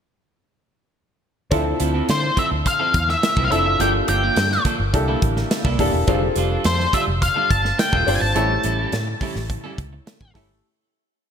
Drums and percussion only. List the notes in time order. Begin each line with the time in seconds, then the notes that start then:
1.51 kick, closed hi-hat
1.80 closed hi-hat
2.09 snare, closed hi-hat
2.37 kick, closed hi-hat
2.66 kick, closed hi-hat
2.94 kick, closed hi-hat
3.09 snare
3.23 snare, closed hi-hat
3.37 kick
3.52 closed hi-hat
3.80 closed hi-hat
4.08 closed hi-hat
4.36 snare, closed hi-hat
4.52 snare
4.65 kick, closed hi-hat
4.94 kick, closed hi-hat
5.22 kick, closed hi-hat
5.37 snare
5.51 snare, closed hi-hat
5.65 kick
5.79 kick, open hi-hat
6.08 kick, closed hi-hat
6.36 closed hi-hat
6.64 snare, closed hi-hat
6.80 snare
6.93 kick, closed hi-hat
7.22 kick, closed hi-hat
7.51 kick, closed hi-hat
7.65 snare
7.79 snare, closed hi-hat
7.93 kick
8.08 open hi-hat
8.36 closed hi-hat
8.63 closed hi-hat
8.92 snare, closed hi-hat
9.21 kick, open hi-hat
9.36 snare
9.50 kick, closed hi-hat
9.78 kick, closed hi-hat
10.07 snare, closed hi-hat
10.21 kick
10.35 kick, snare, open hi-hat